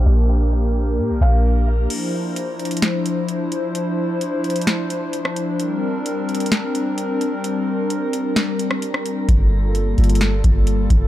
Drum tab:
CC |--------------------------------|x-------------------------------|--------------------------------|--------------------------------|
HH |--------------------------------|x-------x---xxxxx---x---x---x---|x-------x---xxxxx---x---x---x---|x-------x---xxxxx---x---x---x---|
SD |--------------------------------|----------------o---------------|----------------o---------r-----|----------------o---------------|
BD |--------------------------------|--------------------------------|--------------------------------|--------------------------------|

CC |--------------------------------|--------------------------------|
HH |x-------x---x---x---x---x---x---|x-------x---xxxxx---x---x---x---|
SD |----------------o-----r---r-----|----------------o---------------|
BD |--------------------------------|o-------------------o-------o---|